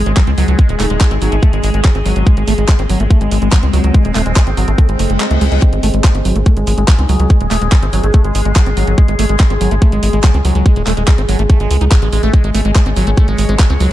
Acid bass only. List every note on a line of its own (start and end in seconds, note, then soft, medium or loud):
0.06 0.13 G#3 medium
0.17 0.23 F#3 medium
0.27 0.31 C4 medium
0.38 0.47 F#3 medium
0.48 0.58 F#3 medium
0.59 0.68 G#3 medium
0.69 0.76 G#3 medium
0.80 0.86 A3 loud
0.90 0.97 G#3 medium
1.01 1.07 G#3 medium
1.11 1.15 C4 medium
1.22 1.31 F#3 medium
1.32 1.36 A3 medium
1.43 1.52 A3 medium
1.53 1.63 G#3 medium
1.64 1.70 G#3 medium
1.74 1.81 G#3 medium
1.85 1.91 F#3 medium
1.95 1.99 C4 medium
2.06 2.15 F#3 medium
2.16 2.26 F#3 medium
2.27 2.36 G#3 medium
2.37 2.44 G#3 medium
2.48 2.54 A3 loud
2.58 2.65 G#3 medium
2.69 2.75 G#3 medium
2.79 2.83 C4 medium
2.89 2.99 F#3 medium
3.00 3.04 A3 medium
3.10 3.20 A3 medium
3.21 3.31 G#3 medium
3.31 3.38 G#3 medium
3.42 3.48 G#3 medium
3.52 3.59 F#3 medium
3.63 3.67 C4 medium
3.73 3.83 F#3 medium
3.84 3.94 F#3 medium
3.94 4.04 G#3 medium
4.05 4.11 G#3 medium
4.15 4.22 A3 loud
4.26 4.32 G#3 medium
4.36 4.43 G#3 medium
4.47 4.51 C4 medium
4.57 4.67 F#3 medium
4.68 4.72 A3 medium
4.78 4.88 A3 medium
4.89 4.99 G#3 medium
4.99 5.11 A3 medium
5.10 5.19 G#3 medium
5.20 5.27 G#3 medium
5.31 5.40 A3 medium
5.41 5.45 G#3 loud
5.52 5.56 G#3 loud
5.62 5.72 G#3 medium
5.73 5.79 G#3 medium
5.83 5.90 A3 loud
5.94 6.00 G#3 medium
6.04 6.11 G#3 medium
6.15 6.19 C4 medium
6.25 6.35 F#3 medium
6.36 6.40 A3 medium
6.46 6.56 A3 medium
6.57 6.66 G#3 medium
6.67 6.74 G#3 medium
6.78 6.84 G#3 medium
6.88 6.95 F#3 medium
6.99 7.02 C4 medium
7.09 7.19 F#3 medium
7.20 7.29 F#3 medium
7.30 7.40 G#3 medium
7.41 7.47 G#3 medium
7.51 7.58 A3 loud
7.62 7.68 G#3 medium
7.72 7.79 G#3 medium
7.83 7.86 C4 medium
7.93 8.03 F#3 medium
8.03 8.07 A3 medium
8.14 8.24 A3 medium
8.24 8.34 G#3 medium
8.35 8.41 G#3 medium
8.45 8.52 G#3 medium
8.56 8.62 F#3 medium
8.66 8.70 C4 medium
8.77 8.87 F#3 medium
8.87 8.97 F#3 medium
8.98 9.08 G#3 medium
9.08 9.15 G#3 medium
9.19 9.25 A3 loud
9.29 9.36 G#3 medium
9.40 9.46 G#3 medium
9.50 9.54 C4 medium
9.61 9.71 F#3 medium
9.71 9.75 A3 medium
9.82 9.91 A3 medium
9.92 10.02 G#3 medium
10.03 10.09 G#3 medium
10.13 10.20 G#3 medium
10.24 10.30 F#3 medium
10.34 10.38 C4 medium
10.45 10.54 F#3 medium
10.55 10.65 F#3 medium
10.66 10.75 G#3 medium
10.76 10.83 G#3 medium
10.87 10.93 A3 loud
10.97 11.04 G#3 medium
11.08 11.14 G#3 medium
11.18 11.22 C4 medium
11.29 11.38 F#3 medium
11.39 11.43 A3 medium
11.50 11.59 A3 medium
11.60 11.70 G#3 medium
11.71 11.77 G#3 medium
11.81 11.85 D#4 medium
11.92 11.95 G#3 medium
12.02 12.09 G#3 medium
12.13 12.22 G#3 medium
12.23 12.33 A3 loud
12.34 12.43 G#3 medium
12.44 12.51 G#3 medium
12.54 12.61 A3 loud
12.65 12.71 G#3 medium
12.76 12.82 G#3 medium
12.86 12.90 C4 medium
12.97 13.06 F#3 medium
13.07 13.11 A3 medium
13.17 13.27 A3 medium
13.28 13.38 G#3 medium
13.38 13.45 G#3 medium
13.49 13.55 G#3 medium
13.59 13.66 F#3 medium
13.70 13.74 C4 medium
13.80 13.90 F#3 medium